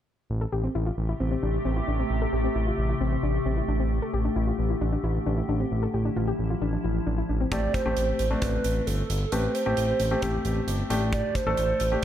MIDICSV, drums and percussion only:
0, 0, Header, 1, 2, 480
1, 0, Start_track
1, 0, Key_signature, 0, "minor"
1, 0, Tempo, 451128
1, 318, Time_signature, 4, 2, 24, 8
1, 12816, End_track
2, 0, Start_track
2, 0, Title_t, "Drums"
2, 7997, Note_on_c, 9, 42, 69
2, 7998, Note_on_c, 9, 36, 100
2, 8103, Note_off_c, 9, 42, 0
2, 8104, Note_off_c, 9, 36, 0
2, 8238, Note_on_c, 9, 36, 86
2, 8239, Note_on_c, 9, 42, 70
2, 8344, Note_off_c, 9, 36, 0
2, 8345, Note_off_c, 9, 42, 0
2, 8476, Note_on_c, 9, 42, 75
2, 8582, Note_off_c, 9, 42, 0
2, 8716, Note_on_c, 9, 42, 72
2, 8822, Note_off_c, 9, 42, 0
2, 8956, Note_on_c, 9, 42, 82
2, 8960, Note_on_c, 9, 36, 84
2, 9062, Note_off_c, 9, 42, 0
2, 9066, Note_off_c, 9, 36, 0
2, 9197, Note_on_c, 9, 42, 68
2, 9303, Note_off_c, 9, 42, 0
2, 9441, Note_on_c, 9, 42, 67
2, 9547, Note_off_c, 9, 42, 0
2, 9681, Note_on_c, 9, 42, 70
2, 9788, Note_off_c, 9, 42, 0
2, 9918, Note_on_c, 9, 42, 69
2, 10024, Note_off_c, 9, 42, 0
2, 10159, Note_on_c, 9, 42, 70
2, 10266, Note_off_c, 9, 42, 0
2, 10395, Note_on_c, 9, 42, 72
2, 10502, Note_off_c, 9, 42, 0
2, 10636, Note_on_c, 9, 42, 70
2, 10742, Note_off_c, 9, 42, 0
2, 10877, Note_on_c, 9, 42, 83
2, 10880, Note_on_c, 9, 36, 83
2, 10983, Note_off_c, 9, 42, 0
2, 10987, Note_off_c, 9, 36, 0
2, 11117, Note_on_c, 9, 42, 67
2, 11224, Note_off_c, 9, 42, 0
2, 11361, Note_on_c, 9, 42, 68
2, 11468, Note_off_c, 9, 42, 0
2, 11602, Note_on_c, 9, 42, 73
2, 11708, Note_off_c, 9, 42, 0
2, 11838, Note_on_c, 9, 36, 98
2, 11838, Note_on_c, 9, 42, 71
2, 11944, Note_off_c, 9, 36, 0
2, 11944, Note_off_c, 9, 42, 0
2, 12078, Note_on_c, 9, 36, 83
2, 12079, Note_on_c, 9, 42, 71
2, 12184, Note_off_c, 9, 36, 0
2, 12185, Note_off_c, 9, 42, 0
2, 12315, Note_on_c, 9, 42, 73
2, 12421, Note_off_c, 9, 42, 0
2, 12554, Note_on_c, 9, 42, 73
2, 12660, Note_off_c, 9, 42, 0
2, 12816, End_track
0, 0, End_of_file